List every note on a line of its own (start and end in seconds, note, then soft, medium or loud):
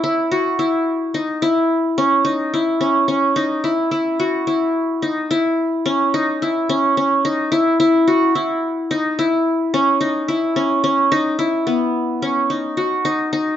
0.00 0.75 C#4 medium
0.00 0.59 E4 medium
0.32 1.61 F#4 medium
0.59 1.20 E4 medium
1.14 1.48 D#4 medium
1.42 2.31 E4 medium
1.98 2.80 C#4 medium
2.25 2.60 D#4 medium
2.54 3.42 E4 medium
2.81 3.08 C#4 medium
3.08 4.63 C#4 medium
3.36 3.70 D#4 medium
3.64 3.91 E4 medium
3.91 4.47 E4 medium
4.20 5.50 F#4 medium
4.47 5.08 E4 medium
5.02 5.37 D#4 medium
5.31 6.20 E4 medium
5.86 6.69 C#4 medium
6.14 6.48 D#4 medium
6.42 7.31 E4 medium
6.69 6.97 C#4 medium
6.97 8.52 C#4 medium
7.25 7.58 D#4 medium
7.52 7.79 E4 medium
7.80 8.35 E4 medium
8.08 9.37 F#4 medium
8.35 8.97 E4 medium
8.91 9.25 D#4 medium
9.19 10.07 E4 medium
9.74 10.56 C#4 medium
10.01 10.34 D#4 medium
10.28 11.18 E4 medium
10.56 10.83 C#4 medium
10.84 12.22 C#4 medium
11.12 11.45 D#4 loud
11.39 12.56 E4 medium
11.67 13.32 B3 medium
12.22 13.57 C#4 medium
12.50 13.04 D#4 medium
12.77 13.57 F#4 medium
13.05 13.32 D#4 medium
13.33 13.57 D#4 medium